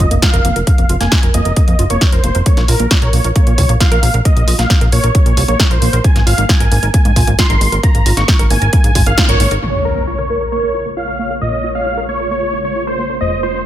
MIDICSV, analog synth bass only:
0, 0, Header, 1, 2, 480
1, 0, Start_track
1, 0, Key_signature, -5, "minor"
1, 0, Tempo, 447761
1, 719, Time_signature, 4, 2, 24, 8
1, 14642, End_track
2, 0, Start_track
2, 0, Title_t, "Analog synth bass"
2, 0, Program_c, 0, 38
2, 118, Note_on_c, 0, 29, 90
2, 193, Note_off_c, 0, 29, 0
2, 359, Note_on_c, 0, 29, 86
2, 433, Note_off_c, 0, 29, 0
2, 479, Note_on_c, 0, 29, 92
2, 553, Note_off_c, 0, 29, 0
2, 599, Note_on_c, 0, 29, 88
2, 673, Note_off_c, 0, 29, 0
2, 839, Note_on_c, 0, 29, 85
2, 913, Note_off_c, 0, 29, 0
2, 960, Note_on_c, 0, 29, 96
2, 1034, Note_off_c, 0, 29, 0
2, 1079, Note_on_c, 0, 29, 87
2, 1153, Note_off_c, 0, 29, 0
2, 1320, Note_on_c, 0, 29, 84
2, 1394, Note_off_c, 0, 29, 0
2, 1439, Note_on_c, 0, 29, 105
2, 1513, Note_off_c, 0, 29, 0
2, 1558, Note_on_c, 0, 29, 90
2, 1632, Note_off_c, 0, 29, 0
2, 1800, Note_on_c, 0, 41, 81
2, 1874, Note_off_c, 0, 41, 0
2, 1920, Note_on_c, 0, 30, 99
2, 1993, Note_off_c, 0, 30, 0
2, 2039, Note_on_c, 0, 29, 91
2, 2113, Note_off_c, 0, 29, 0
2, 2279, Note_on_c, 0, 29, 83
2, 2353, Note_off_c, 0, 29, 0
2, 2400, Note_on_c, 0, 29, 93
2, 2473, Note_off_c, 0, 29, 0
2, 2520, Note_on_c, 0, 29, 91
2, 2593, Note_off_c, 0, 29, 0
2, 2759, Note_on_c, 0, 34, 90
2, 2833, Note_off_c, 0, 34, 0
2, 2878, Note_on_c, 0, 34, 94
2, 2953, Note_off_c, 0, 34, 0
2, 2998, Note_on_c, 0, 34, 89
2, 3073, Note_off_c, 0, 34, 0
2, 3239, Note_on_c, 0, 34, 87
2, 3313, Note_off_c, 0, 34, 0
2, 3358, Note_on_c, 0, 34, 100
2, 3432, Note_off_c, 0, 34, 0
2, 3478, Note_on_c, 0, 34, 87
2, 3552, Note_off_c, 0, 34, 0
2, 3717, Note_on_c, 0, 46, 81
2, 3792, Note_off_c, 0, 46, 0
2, 3839, Note_on_c, 0, 36, 99
2, 3913, Note_off_c, 0, 36, 0
2, 3956, Note_on_c, 0, 34, 97
2, 4032, Note_off_c, 0, 34, 0
2, 4197, Note_on_c, 0, 34, 84
2, 4272, Note_off_c, 0, 34, 0
2, 4317, Note_on_c, 0, 34, 97
2, 4392, Note_off_c, 0, 34, 0
2, 4438, Note_on_c, 0, 34, 94
2, 4513, Note_off_c, 0, 34, 0
2, 4677, Note_on_c, 0, 34, 87
2, 4752, Note_off_c, 0, 34, 0
2, 4796, Note_on_c, 0, 34, 97
2, 4872, Note_off_c, 0, 34, 0
2, 4917, Note_on_c, 0, 34, 88
2, 4992, Note_off_c, 0, 34, 0
2, 5157, Note_on_c, 0, 34, 85
2, 5232, Note_off_c, 0, 34, 0
2, 5277, Note_on_c, 0, 34, 100
2, 5352, Note_off_c, 0, 34, 0
2, 5398, Note_on_c, 0, 34, 87
2, 5473, Note_off_c, 0, 34, 0
2, 5637, Note_on_c, 0, 46, 84
2, 5712, Note_off_c, 0, 46, 0
2, 5757, Note_on_c, 0, 36, 101
2, 5832, Note_off_c, 0, 36, 0
2, 5877, Note_on_c, 0, 34, 91
2, 5952, Note_off_c, 0, 34, 0
2, 6117, Note_on_c, 0, 34, 84
2, 6192, Note_off_c, 0, 34, 0
2, 6237, Note_on_c, 0, 34, 91
2, 6312, Note_off_c, 0, 34, 0
2, 6357, Note_on_c, 0, 34, 90
2, 6432, Note_off_c, 0, 34, 0
2, 6597, Note_on_c, 0, 32, 85
2, 6672, Note_off_c, 0, 32, 0
2, 6717, Note_on_c, 0, 32, 99
2, 6792, Note_off_c, 0, 32, 0
2, 6839, Note_on_c, 0, 32, 91
2, 6913, Note_off_c, 0, 32, 0
2, 7078, Note_on_c, 0, 32, 83
2, 7153, Note_off_c, 0, 32, 0
2, 7199, Note_on_c, 0, 32, 104
2, 7273, Note_off_c, 0, 32, 0
2, 7320, Note_on_c, 0, 32, 89
2, 7393, Note_off_c, 0, 32, 0
2, 7559, Note_on_c, 0, 44, 87
2, 7633, Note_off_c, 0, 44, 0
2, 7679, Note_on_c, 0, 34, 102
2, 7753, Note_off_c, 0, 34, 0
2, 7799, Note_on_c, 0, 32, 94
2, 7873, Note_off_c, 0, 32, 0
2, 8038, Note_on_c, 0, 32, 88
2, 8113, Note_off_c, 0, 32, 0
2, 8157, Note_on_c, 0, 32, 96
2, 8232, Note_off_c, 0, 32, 0
2, 8279, Note_on_c, 0, 32, 93
2, 8353, Note_off_c, 0, 32, 0
2, 8517, Note_on_c, 0, 32, 86
2, 8592, Note_off_c, 0, 32, 0
2, 8637, Note_on_c, 0, 32, 96
2, 8712, Note_off_c, 0, 32, 0
2, 8757, Note_on_c, 0, 32, 97
2, 8832, Note_off_c, 0, 32, 0
2, 8998, Note_on_c, 0, 32, 85
2, 9073, Note_off_c, 0, 32, 0
2, 9118, Note_on_c, 0, 32, 97
2, 9193, Note_off_c, 0, 32, 0
2, 9236, Note_on_c, 0, 32, 89
2, 9312, Note_off_c, 0, 32, 0
2, 9476, Note_on_c, 0, 44, 81
2, 9552, Note_off_c, 0, 44, 0
2, 9599, Note_on_c, 0, 32, 100
2, 9673, Note_off_c, 0, 32, 0
2, 9716, Note_on_c, 0, 32, 93
2, 9792, Note_off_c, 0, 32, 0
2, 9955, Note_on_c, 0, 32, 90
2, 10031, Note_off_c, 0, 32, 0
2, 10077, Note_on_c, 0, 32, 99
2, 10152, Note_off_c, 0, 32, 0
2, 10196, Note_on_c, 0, 32, 90
2, 10272, Note_off_c, 0, 32, 0
2, 10317, Note_on_c, 0, 34, 87
2, 12214, Note_off_c, 0, 34, 0
2, 12238, Note_on_c, 0, 34, 88
2, 14134, Note_off_c, 0, 34, 0
2, 14160, Note_on_c, 0, 29, 86
2, 14642, Note_off_c, 0, 29, 0
2, 14642, End_track
0, 0, End_of_file